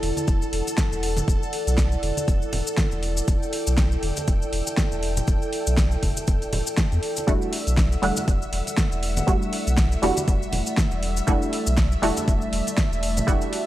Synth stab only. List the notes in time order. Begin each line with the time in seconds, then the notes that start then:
7.27 G3 A3 D4 E4 F#4
8.02 G3 A3 D4 E4 F#4
9.27 G3 A3 D4 E4 F#4
10.02 G3 A3 D4 E4 F#4
11.27 G3 A3 D4 E4 F#4
12.02 G3 A3 D4 E4 F#4
13.27 G3 A3 D4 E4 F#4